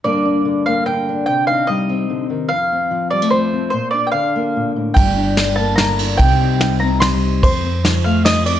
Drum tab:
RD |------|------|------|------|
SD |------|------|------|------|
BD |------|------|------|------|

RD |x-x-xx|x-x-x-|x-x-xx|
SD |--o-o-|--o-o-|--o-o-|
BD |o-----|o-----|o-----|